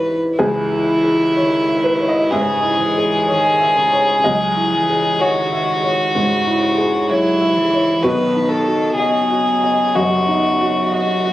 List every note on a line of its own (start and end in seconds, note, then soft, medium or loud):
0.00 0.41 G#2 soft
0.00 0.13 E3 medium
0.00 0.37 G#3 medium
0.00 0.37 E4 medium
0.00 0.40 E4 soft
0.00 0.13 B4 soft
0.00 0.33 B4 medium
0.00 0.38 B4 soft
0.00 0.17 C#5 soft
0.37 2.28 C#2 medium
0.37 1.38 E3 medium
0.37 4.20 G#3 medium
0.37 2.32 E4 medium
0.37 4.20 G#4 medium
0.37 1.03 G#4 medium
0.37 4.20 C#5 medium
0.72 1.24 E4 soft
1.04 1.55 G#4 soft
1.36 2.31 D#3 medium
1.36 1.87 C#5 medium
1.68 2.19 E5 soft
1.84 2.06 B4 medium
2.00 2.51 C#5 medium
2.08 2.30 D#5 medium
2.31 2.83 G#2 soft
2.31 2.81 C#3 medium
2.31 3.27 G#4 medium
2.31 3.59 E5 medium
2.64 3.15 E4 soft
2.79 3.30 E3 medium
2.98 3.48 G#4 soft
3.27 3.79 D#3 medium
3.27 5.23 G#4 medium
3.27 3.79 C#5 soft
3.60 4.11 E5 soft
3.77 4.23 C#3 medium
3.93 4.44 C#5 soft
4.24 6.11 C#2 medium
4.24 4.74 F#3 medium
4.24 8.00 G#3 medium
4.24 8.00 G#4 medium
4.24 8.00 C#5 medium
4.24 5.16 D#5 medium
4.57 5.08 E4 soft
4.72 5.20 E3 medium
4.90 5.40 G#4 soft
5.20 6.17 D#3 medium
5.20 7.11 F#4 medium
5.20 5.82 C#5 medium
5.52 6.03 E5 soft
5.83 6.34 C#5 soft
6.15 6.65 G#2 soft
6.15 7.11 C#3 medium
6.47 6.97 E4 soft
6.78 7.28 G#4 soft
7.09 7.57 F#3 medium
7.09 8.04 E4 medium
7.09 7.60 C#5 soft
7.41 7.92 E5 soft
7.56 8.04 E3 medium
7.74 8.05 C#5 soft
8.03 9.92 B1 soft
8.03 8.97 D#3 medium
8.03 11.33 B3 medium
8.03 8.66 F#4 medium
8.03 11.33 F#4 medium
8.03 8.51 B4 medium
8.03 11.33 D#5 medium
8.36 8.86 D#4 soft
8.49 8.96 A4 medium
8.67 9.18 F#4 soft
8.97 11.33 C#3 medium
8.97 9.97 G#4 medium
8.97 9.50 D#5 soft
9.30 9.83 F#4 soft
9.63 9.94 D#5 soft
9.95 10.48 F#2 soft
9.95 10.92 F#4 medium
9.95 10.91 D#5 medium
10.28 10.80 D#4 soft
10.61 11.11 F#4 soft
10.92 11.33 F#4 medium
10.92 11.33 D#5 soft
11.23 11.33 F#4 soft